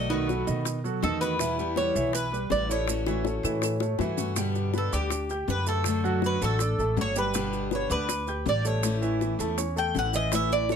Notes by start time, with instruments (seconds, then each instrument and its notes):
Already playing: upright bass B1, cuban tres D#5
0.09 grand piano D#3 D#4 D#5, steel-string acoustic guitar D#3 A3 B3 F#4, cuban tres B4, high bongo, maracas
0.28 grand piano F#3 F#4 A4, high bongo, maracas
0.47 upright bass B2, grand piano D#3 D#4 D#5, maracas
0.65 muted steel-string acoustic guitar stroke, high bongo, maracas
0.84 grand piano F#3 F#4 A4, high bongo, maracas
1.02 upright bass E2, steel-string acoustic guitar D#3 A3 B3 F#4, grand piano D#3 D#4 D#5, cuban tres A4, high bongo, low bongo, maracas
1.21 steel-string acoustic guitar D#3 A3 B3 F#4, cuban tres B4, high bongo, maracas
1.39 steel-string acoustic guitar B2 E3 G3 B3 E4, grand piano E3 E4 E5, high bongo, maracas
1.58 steel-string acoustic guitar E3 G3 B3 E4, high bongo, maracas
1.76 grand piano G3 G4 B4, cuban tres C#5, high bongo, maracas
1.95 upright bass B1, grand piano E3 E4 E5, maracas
2.13 cuban tres B4, muted steel-string acoustic guitar stroke, high bongo, maracas
2.32 grand piano G3 G4 B4, high bongo, maracas
2.50 upright bass A1, steel-string acoustic guitar E3 G3 B3 E4, cuban tres D5, high bongo, low bongo, maracas
2.69 steel-string acoustic guitar E3 G3 B3 E4, grand piano A3 A4 C#5, cuban tres C#5, high bongo, maracas
2.87 steel-string acoustic guitar E3 A3 C#4 F#4, high bongo, maracas
3.06 grand piano E3 E4 E5, steel-string acoustic guitar A3 C#4 F#4, kalimba F#4, high bongo, maracas
3.25 grand piano A3 A4 C#5, high bongo, maracas
3.43 upright bass A2, grand piano E3 E4 E5, kalimba A4, maracas
3.62 kalimba A4, muted steel-string acoustic guitar stroke, high bongo, maracas
3.80 grand piano A3 A4 C#5, high bongo, maracas
3.99 upright bass G2, grand piano E3 E4 E5, steel-string acoustic guitar E3 A3 C#4 F#4, kalimba F#4, high bongo, maracas
4.17 steel-string acoustic guitar A3 C#4 F#4, low bongo, maracas
4.36 steel-string acoustic guitar B2 D3 G3 B3 G4, grand piano G3 G4 G5, high bongo, maracas
4.55 high bongo, maracas
4.74 grand piano B3 B4 B5, high bongo, maracas
4.78 cuban tres A4
4.92 upright bass D2, steel-string acoustic guitar D3 G3 B3 G4, grand piano D4 D5 D6, cuban tres G4, maracas
5.10 muted steel-string acoustic guitar stroke, high bongo, maracas
5.29 grand piano G4 G5 G6, high bongo, maracas
5.48 upright bass F#2, steel-string acoustic guitar D3 B3 G4, cuban tres B4, high bongo, low bongo, maracas
5.66 grand piano A3 A4 A5, cuban tres A4, high bongo, maracas
5.84 steel-string acoustic guitar D3 F#3 A3 D4 F#4, high bongo, maracas
6.04 grand piano F#3 F#4 F#5, high bongo, maracas
6.22 high bongo, maracas
6.26 cuban tres B4
6.41 upright bass A1, steel-string acoustic guitar F#3 A3 D4 F#4, grand piano A3 A4 A5, cuban tres A4, maracas
6.59 grand piano D4 D5 D6, muted steel-string acoustic guitar stroke, high bongo, maracas
6.78 upright bass A1, grand piano A3 A4 A5, high bongo, maracas
6.97 upright bass G1, steel-string acoustic guitar F#3 A3 D4 F#4, high bongo, low bongo, maracas
7.01 cuban tres C#5
7.16 grand piano G3 G4 G5, cuban tres B4, high bongo, maracas
7.33 steel-string acoustic guitar B2 D3 G3 B3 G4, grand piano G3 G4 G5, high bongo, maracas
7.53 high bongo, maracas
7.71 grand piano B3 B4 B5, cuban tres C#5, high bongo, maracas
7.90 upright bass D2, steel-string acoustic guitar D3 G3 B3 G4, grand piano D4 D5 D6, cuban tres B4, maracas
8.09 muted steel-string acoustic guitar stroke, high bongo, maracas
8.27 grand piano G4 G5 G6, high bongo, maracas
8.45 upright bass A1, steel-string acoustic guitar D3 G3 B3 G4, cuban tres D5, high bongo, low bongo, maracas
8.65 grand piano A3 A4 A5, cuban tres C#5, high bongo, maracas
8.83 steel-string acoustic guitar E3 A3 C#4 E4, high bongo, maracas
9.01 grand piano E3 E4 E5, high bongo, maracas
9.21 high bongo, maracas
9.39 upright bass E2, grand piano A3 A4 A5, steel-string acoustic guitar A3 C#4 E4, maracas
9.57 grand piano C#4 C#5 C#6, muted steel-string acoustic guitar stroke, high bongo, maracas
9.76 grand piano A3 A4 A5, cuban tres G5, high bongo, maracas
9.95 upright bass A1, steel-string acoustic guitar E3 A3 C#4 E4, cuban tres F#5, high bongo, low bongo, maracas
10.13 grand piano E3 E4 E5, cuban tres D#5, high bongo, maracas
10.31 steel-string acoustic guitar E3 A3 C#4 E4, grand piano E3 E4 E5, cuban tres E5, high bongo, maracas
10.50 cuban tres D5, high bongo, maracas
10.69 grand piano A3 A4 A5, cuban tres C#5, high bongo, maracas